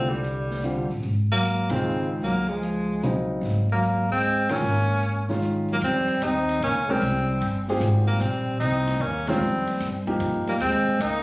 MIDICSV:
0, 0, Header, 1, 7, 480
1, 0, Start_track
1, 0, Tempo, 398671
1, 1245, Time_signature, 3, 2, 24, 8
1, 13519, End_track
2, 0, Start_track
2, 0, Title_t, "Grand piano"
2, 0, Program_c, 0, 0
2, 771, Note_on_c, 0, 50, 48
2, 771, Note_on_c, 0, 55, 41
2, 771, Note_on_c, 0, 60, 43
2, 775, Note_on_c, 0, 65, 53
2, 1057, Note_off_c, 0, 50, 0
2, 1057, Note_off_c, 0, 55, 0
2, 1057, Note_off_c, 0, 60, 0
2, 1059, Note_off_c, 0, 65, 0
2, 2047, Note_on_c, 0, 51, 59
2, 2049, Note_on_c, 0, 49, 54
2, 2049, Note_on_c, 0, 56, 56
2, 2061, Note_on_c, 0, 65, 67
2, 2653, Note_off_c, 0, 51, 0
2, 2654, Note_off_c, 0, 49, 0
2, 2654, Note_off_c, 0, 56, 0
2, 2660, Note_off_c, 0, 65, 0
2, 3650, Note_on_c, 0, 49, 63
2, 3654, Note_on_c, 0, 54, 54
2, 3664, Note_on_c, 0, 60, 59
2, 3666, Note_on_c, 0, 63, 65
2, 4383, Note_off_c, 0, 49, 0
2, 4385, Note_off_c, 0, 54, 0
2, 4390, Note_off_c, 0, 60, 0
2, 4392, Note_off_c, 0, 63, 0
2, 5418, Note_on_c, 0, 51, 63
2, 5420, Note_on_c, 0, 56, 55
2, 5425, Note_on_c, 0, 65, 66
2, 5429, Note_on_c, 0, 61, 51
2, 5554, Note_off_c, 0, 51, 0
2, 5555, Note_off_c, 0, 56, 0
2, 5558, Note_off_c, 0, 65, 0
2, 5560, Note_off_c, 0, 61, 0
2, 6368, Note_on_c, 0, 51, 60
2, 6375, Note_on_c, 0, 61, 56
2, 6379, Note_on_c, 0, 56, 55
2, 6379, Note_on_c, 0, 65, 68
2, 6973, Note_off_c, 0, 51, 0
2, 6977, Note_off_c, 0, 61, 0
2, 6979, Note_off_c, 0, 56, 0
2, 6979, Note_off_c, 0, 65, 0
2, 8297, Note_on_c, 0, 56, 58
2, 8297, Note_on_c, 0, 61, 58
2, 8306, Note_on_c, 0, 67, 58
2, 8310, Note_on_c, 0, 70, 69
2, 8434, Note_off_c, 0, 56, 0
2, 8434, Note_off_c, 0, 61, 0
2, 8438, Note_off_c, 0, 67, 0
2, 8440, Note_off_c, 0, 70, 0
2, 9264, Note_on_c, 0, 67, 65
2, 9265, Note_on_c, 0, 65, 62
2, 9266, Note_on_c, 0, 60, 64
2, 9268, Note_on_c, 0, 68, 77
2, 9862, Note_off_c, 0, 65, 0
2, 9862, Note_off_c, 0, 67, 0
2, 9863, Note_off_c, 0, 60, 0
2, 9864, Note_off_c, 0, 68, 0
2, 11177, Note_on_c, 0, 51, 74
2, 11181, Note_on_c, 0, 56, 68
2, 11186, Note_on_c, 0, 65, 80
2, 11188, Note_on_c, 0, 61, 65
2, 11315, Note_off_c, 0, 51, 0
2, 11317, Note_off_c, 0, 56, 0
2, 11320, Note_off_c, 0, 61, 0
2, 11320, Note_off_c, 0, 65, 0
2, 12125, Note_on_c, 0, 58, 60
2, 12126, Note_on_c, 0, 67, 71
2, 12127, Note_on_c, 0, 53, 65
2, 12129, Note_on_c, 0, 63, 57
2, 12734, Note_off_c, 0, 58, 0
2, 12735, Note_off_c, 0, 53, 0
2, 12735, Note_off_c, 0, 67, 0
2, 12736, Note_off_c, 0, 63, 0
2, 13519, End_track
3, 0, Start_track
3, 0, Title_t, "Tenor saxophone"
3, 0, Program_c, 1, 66
3, 0, Note_on_c, 1, 60, 85
3, 112, Note_on_c, 1, 55, 72
3, 130, Note_off_c, 1, 60, 0
3, 1079, Note_off_c, 1, 55, 0
3, 1585, Note_on_c, 1, 58, 88
3, 2063, Note_on_c, 1, 60, 100
3, 2081, Note_off_c, 1, 58, 0
3, 2534, Note_off_c, 1, 60, 0
3, 2689, Note_on_c, 1, 58, 83
3, 2992, Note_on_c, 1, 56, 74
3, 3010, Note_off_c, 1, 58, 0
3, 3958, Note_off_c, 1, 56, 0
3, 4478, Note_on_c, 1, 58, 80
3, 4908, Note_off_c, 1, 58, 0
3, 4957, Note_on_c, 1, 60, 93
3, 5429, Note_on_c, 1, 61, 99
3, 5447, Note_off_c, 1, 60, 0
3, 6535, Note_off_c, 1, 61, 0
3, 6892, Note_on_c, 1, 58, 77
3, 6953, Note_off_c, 1, 58, 0
3, 7032, Note_on_c, 1, 60, 97
3, 7497, Note_on_c, 1, 63, 98
3, 7515, Note_off_c, 1, 60, 0
3, 7970, Note_off_c, 1, 63, 0
3, 7986, Note_on_c, 1, 61, 98
3, 8313, Note_on_c, 1, 60, 85
3, 8331, Note_off_c, 1, 61, 0
3, 9260, Note_off_c, 1, 60, 0
3, 9718, Note_on_c, 1, 58, 81
3, 9885, Note_on_c, 1, 60, 91
3, 9903, Note_off_c, 1, 58, 0
3, 10346, Note_off_c, 1, 60, 0
3, 10353, Note_on_c, 1, 63, 102
3, 10860, Note_on_c, 1, 61, 95
3, 10878, Note_off_c, 1, 63, 0
3, 11179, Note_on_c, 1, 60, 85
3, 11197, Note_off_c, 1, 61, 0
3, 12134, Note_off_c, 1, 60, 0
3, 12623, Note_on_c, 1, 58, 76
3, 12691, Note_off_c, 1, 58, 0
3, 12773, Note_on_c, 1, 60, 95
3, 13263, Note_on_c, 1, 63, 94
3, 13281, Note_off_c, 1, 60, 0
3, 13519, Note_off_c, 1, 63, 0
3, 13519, End_track
4, 0, Start_track
4, 0, Title_t, "Trombone"
4, 0, Program_c, 2, 57
4, 0, Note_on_c, 2, 57, 75
4, 122, Note_on_c, 2, 50, 63
4, 140, Note_off_c, 2, 57, 0
4, 1084, Note_off_c, 2, 50, 0
4, 1588, Note_on_c, 2, 54, 72
4, 2065, Note_on_c, 2, 56, 75
4, 2083, Note_off_c, 2, 54, 0
4, 2535, Note_off_c, 2, 56, 0
4, 2694, Note_on_c, 2, 54, 75
4, 3014, Note_on_c, 2, 53, 65
4, 3032, Note_off_c, 2, 54, 0
4, 3969, Note_off_c, 2, 53, 0
4, 4484, Note_on_c, 2, 54, 68
4, 4912, Note_off_c, 2, 54, 0
4, 4938, Note_on_c, 2, 56, 80
4, 5415, Note_on_c, 2, 58, 83
4, 5433, Note_off_c, 2, 56, 0
4, 6528, Note_off_c, 2, 58, 0
4, 6874, Note_on_c, 2, 54, 65
4, 6939, Note_off_c, 2, 54, 0
4, 7047, Note_on_c, 2, 55, 73
4, 7520, Note_on_c, 2, 60, 86
4, 7538, Note_off_c, 2, 55, 0
4, 7982, Note_off_c, 2, 60, 0
4, 7988, Note_on_c, 2, 58, 70
4, 8297, Note_on_c, 2, 55, 73
4, 8315, Note_off_c, 2, 58, 0
4, 9251, Note_off_c, 2, 55, 0
4, 9750, Note_on_c, 2, 55, 71
4, 9897, Note_off_c, 2, 55, 0
4, 9897, Note_on_c, 2, 55, 81
4, 10371, Note_off_c, 2, 55, 0
4, 10376, Note_on_c, 2, 60, 91
4, 10867, Note_on_c, 2, 58, 75
4, 10885, Note_off_c, 2, 60, 0
4, 11197, Note_on_c, 2, 55, 76
4, 11215, Note_off_c, 2, 58, 0
4, 12143, Note_off_c, 2, 55, 0
4, 12609, Note_on_c, 2, 55, 64
4, 12681, Note_off_c, 2, 55, 0
4, 12772, Note_on_c, 2, 56, 74
4, 13260, Note_on_c, 2, 58, 87
4, 13278, Note_off_c, 2, 56, 0
4, 13519, Note_off_c, 2, 58, 0
4, 13519, End_track
5, 0, Start_track
5, 0, Title_t, "Upright bass"
5, 0, Program_c, 3, 32
5, 0, Note_on_c, 3, 36, 76
5, 1032, Note_off_c, 3, 36, 0
5, 1077, Note_on_c, 3, 33, 65
5, 1229, Note_off_c, 3, 33, 0
5, 1234, Note_on_c, 3, 32, 73
5, 2630, Note_off_c, 3, 32, 0
5, 2671, Note_on_c, 3, 37, 73
5, 4069, Note_off_c, 3, 37, 0
5, 4109, Note_on_c, 3, 32, 74
5, 5507, Note_off_c, 3, 32, 0
5, 5549, Note_on_c, 3, 32, 74
5, 6948, Note_off_c, 3, 32, 0
5, 7004, Note_on_c, 3, 41, 78
5, 7469, Note_off_c, 3, 41, 0
5, 7476, Note_on_c, 3, 39, 83
5, 7945, Note_off_c, 3, 39, 0
5, 7953, Note_on_c, 3, 37, 86
5, 8424, Note_off_c, 3, 37, 0
5, 8439, Note_on_c, 3, 36, 81
5, 8907, Note_off_c, 3, 36, 0
5, 8918, Note_on_c, 3, 31, 88
5, 9387, Note_off_c, 3, 31, 0
5, 9393, Note_on_c, 3, 32, 93
5, 9864, Note_off_c, 3, 32, 0
5, 9878, Note_on_c, 3, 34, 75
5, 10347, Note_off_c, 3, 34, 0
5, 10359, Note_on_c, 3, 36, 85
5, 10828, Note_off_c, 3, 36, 0
5, 10837, Note_on_c, 3, 39, 94
5, 11301, Note_off_c, 3, 39, 0
5, 11308, Note_on_c, 3, 41, 73
5, 11783, Note_off_c, 3, 41, 0
5, 11802, Note_on_c, 3, 43, 83
5, 12270, Note_off_c, 3, 43, 0
5, 12280, Note_on_c, 3, 41, 90
5, 12749, Note_off_c, 3, 41, 0
5, 12766, Note_on_c, 3, 39, 78
5, 13066, Note_off_c, 3, 39, 0
5, 13235, Note_on_c, 3, 37, 78
5, 13519, Note_off_c, 3, 37, 0
5, 13519, End_track
6, 0, Start_track
6, 0, Title_t, "Muted upright bass strokes"
6, 13086, Note_on_c, 9, 29, 37
6, 13206, Note_off_c, 9, 29, 0
6, 13519, End_track
7, 0, Start_track
7, 0, Title_t, "Drums"
7, 288, Note_on_c, 9, 42, 45
7, 408, Note_off_c, 9, 42, 0
7, 610, Note_on_c, 9, 38, 47
7, 731, Note_off_c, 9, 38, 0
7, 768, Note_on_c, 9, 42, 46
7, 888, Note_off_c, 9, 42, 0
7, 1089, Note_on_c, 9, 46, 35
7, 1209, Note_off_c, 9, 46, 0
7, 1241, Note_on_c, 9, 46, 37
7, 1361, Note_off_c, 9, 46, 0
7, 1717, Note_on_c, 9, 42, 48
7, 1837, Note_off_c, 9, 42, 0
7, 2040, Note_on_c, 9, 51, 68
7, 2048, Note_on_c, 9, 36, 73
7, 2161, Note_off_c, 9, 51, 0
7, 2169, Note_off_c, 9, 36, 0
7, 2683, Note_on_c, 9, 46, 41
7, 2804, Note_off_c, 9, 46, 0
7, 3165, Note_on_c, 9, 42, 47
7, 3285, Note_off_c, 9, 42, 0
7, 3651, Note_on_c, 9, 42, 47
7, 3771, Note_off_c, 9, 42, 0
7, 4128, Note_on_c, 9, 46, 40
7, 4131, Note_on_c, 9, 38, 35
7, 4248, Note_off_c, 9, 46, 0
7, 4252, Note_off_c, 9, 38, 0
7, 4450, Note_on_c, 9, 36, 49
7, 4570, Note_off_c, 9, 36, 0
7, 4608, Note_on_c, 9, 42, 44
7, 4729, Note_off_c, 9, 42, 0
7, 4929, Note_on_c, 9, 46, 36
7, 4931, Note_on_c, 9, 36, 52
7, 5049, Note_off_c, 9, 46, 0
7, 5051, Note_off_c, 9, 36, 0
7, 5082, Note_on_c, 9, 46, 39
7, 5202, Note_off_c, 9, 46, 0
7, 5407, Note_on_c, 9, 51, 61
7, 5411, Note_on_c, 9, 38, 74
7, 5528, Note_off_c, 9, 51, 0
7, 5531, Note_off_c, 9, 38, 0
7, 6048, Note_on_c, 9, 42, 48
7, 6168, Note_off_c, 9, 42, 0
7, 6367, Note_on_c, 9, 46, 37
7, 6370, Note_on_c, 9, 38, 41
7, 6487, Note_off_c, 9, 46, 0
7, 6491, Note_off_c, 9, 38, 0
7, 6526, Note_on_c, 9, 42, 45
7, 6647, Note_off_c, 9, 42, 0
7, 6842, Note_on_c, 9, 46, 34
7, 6962, Note_off_c, 9, 46, 0
7, 7000, Note_on_c, 9, 51, 60
7, 7120, Note_off_c, 9, 51, 0
7, 7317, Note_on_c, 9, 51, 46
7, 7437, Note_off_c, 9, 51, 0
7, 7485, Note_on_c, 9, 44, 57
7, 7485, Note_on_c, 9, 51, 65
7, 7606, Note_off_c, 9, 44, 0
7, 7606, Note_off_c, 9, 51, 0
7, 7812, Note_on_c, 9, 51, 46
7, 7932, Note_off_c, 9, 51, 0
7, 7973, Note_on_c, 9, 51, 56
7, 8094, Note_off_c, 9, 51, 0
7, 8445, Note_on_c, 9, 51, 58
7, 8566, Note_off_c, 9, 51, 0
7, 8927, Note_on_c, 9, 51, 56
7, 9047, Note_off_c, 9, 51, 0
7, 9246, Note_on_c, 9, 38, 57
7, 9366, Note_off_c, 9, 38, 0
7, 9400, Note_on_c, 9, 44, 58
7, 9400, Note_on_c, 9, 51, 65
7, 9520, Note_off_c, 9, 44, 0
7, 9520, Note_off_c, 9, 51, 0
7, 9729, Note_on_c, 9, 51, 47
7, 9849, Note_off_c, 9, 51, 0
7, 9886, Note_on_c, 9, 51, 61
7, 10006, Note_off_c, 9, 51, 0
7, 10363, Note_on_c, 9, 44, 52
7, 10363, Note_on_c, 9, 51, 71
7, 10483, Note_off_c, 9, 44, 0
7, 10483, Note_off_c, 9, 51, 0
7, 10684, Note_on_c, 9, 51, 70
7, 10687, Note_on_c, 9, 38, 45
7, 10804, Note_off_c, 9, 51, 0
7, 10808, Note_off_c, 9, 38, 0
7, 11160, Note_on_c, 9, 51, 67
7, 11164, Note_on_c, 9, 38, 76
7, 11281, Note_off_c, 9, 51, 0
7, 11284, Note_off_c, 9, 38, 0
7, 11647, Note_on_c, 9, 51, 46
7, 11650, Note_on_c, 9, 38, 48
7, 11767, Note_off_c, 9, 51, 0
7, 11771, Note_off_c, 9, 38, 0
7, 11804, Note_on_c, 9, 44, 54
7, 11804, Note_on_c, 9, 51, 62
7, 11807, Note_on_c, 9, 38, 38
7, 11924, Note_off_c, 9, 44, 0
7, 11924, Note_off_c, 9, 51, 0
7, 11928, Note_off_c, 9, 38, 0
7, 12125, Note_on_c, 9, 51, 49
7, 12128, Note_on_c, 9, 36, 55
7, 12246, Note_off_c, 9, 51, 0
7, 12248, Note_off_c, 9, 36, 0
7, 12279, Note_on_c, 9, 51, 61
7, 12399, Note_off_c, 9, 51, 0
7, 12608, Note_on_c, 9, 51, 46
7, 12611, Note_on_c, 9, 38, 47
7, 12728, Note_off_c, 9, 51, 0
7, 12732, Note_off_c, 9, 38, 0
7, 12766, Note_on_c, 9, 51, 54
7, 12886, Note_off_c, 9, 51, 0
7, 13248, Note_on_c, 9, 44, 54
7, 13248, Note_on_c, 9, 51, 66
7, 13369, Note_off_c, 9, 44, 0
7, 13369, Note_off_c, 9, 51, 0
7, 13519, End_track
0, 0, End_of_file